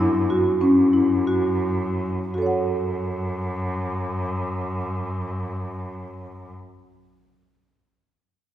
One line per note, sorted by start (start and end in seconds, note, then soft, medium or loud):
0.00 0.61 F#2 medium
0.00 0.21 E4 medium
0.30 0.51 F#4 medium
0.61 2.31 F#2 medium
0.61 0.83 C#4 medium
0.93 1.16 E4 soft
1.27 1.76 F#4 medium
2.34 6.52 F#2 medium
2.34 6.53 F#4 soft
2.38 6.57 A4 soft
2.38 6.61 C#5 soft
2.46 6.65 F#5 soft